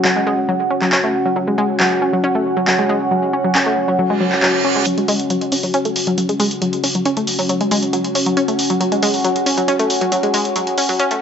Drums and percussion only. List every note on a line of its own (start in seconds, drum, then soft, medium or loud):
0.05 clap loud
0.82 clap soft
0.92 clap loud
1.80 clap loud
2.67 clap loud
3.55 clap loud
4.32 clap soft
4.43 clap loud
4.86 closed hi-hat medium
4.98 closed hi-hat medium
5.08 open hi-hat loud
5.20 closed hi-hat medium
5.30 closed hi-hat medium
5.41 closed hi-hat medium
5.52 open hi-hat loud
5.63 open hi-hat medium
5.74 closed hi-hat medium
5.85 closed hi-hat medium
5.96 open hi-hat loud
6.07 closed hi-hat medium
6.18 closed hi-hat medium
6.29 closed hi-hat medium
6.40 open hi-hat loud
6.51 closed hi-hat medium
6.62 closed hi-hat medium
6.73 closed hi-hat medium
6.84 open hi-hat loud
6.95 closed hi-hat medium
7.05 closed hi-hat medium
7.17 closed hi-hat medium
7.27 open hi-hat loud
7.39 open hi-hat medium
7.49 closed hi-hat medium
7.61 closed hi-hat medium
7.71 open hi-hat loud
7.83 closed hi-hat medium
7.93 closed hi-hat medium
8.04 closed hi-hat medium
8.15 open hi-hat loud
8.26 closed hi-hat medium
8.37 closed hi-hat medium
8.48 closed hi-hat medium
8.59 open hi-hat loud
8.70 closed hi-hat medium
8.81 closed hi-hat medium
8.92 closed hi-hat medium
9.03 open hi-hat loud
9.14 open hi-hat medium
9.24 closed hi-hat medium
9.36 closed hi-hat medium
9.46 open hi-hat loud
9.58 closed hi-hat medium
9.68 closed hi-hat medium
9.79 closed hi-hat medium
9.90 open hi-hat loud
10.01 closed hi-hat medium
10.12 closed hi-hat medium
10.23 closed hi-hat soft
10.34 open hi-hat loud
10.45 closed hi-hat medium
10.56 closed hi-hat medium
10.67 closed hi-hat medium
10.78 open hi-hat loud
10.89 open hi-hat medium
10.99 closed hi-hat medium
11.11 closed hi-hat medium